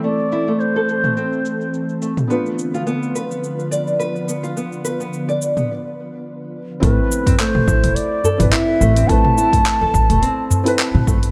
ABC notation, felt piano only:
X:1
M:4/4
L:1/16
Q:"Swing 16ths" 1/4=106
K:Am
V:1 name="Felt piano"
[CEAc]16 | [B,DFB]16- | [B,DFB]8 z8 | [CEA]8- [CEA]3 [CEAB]4- [CEAB] |
[CEAB]8- [CEAB]3 [CEAB]4- [CEAB] |]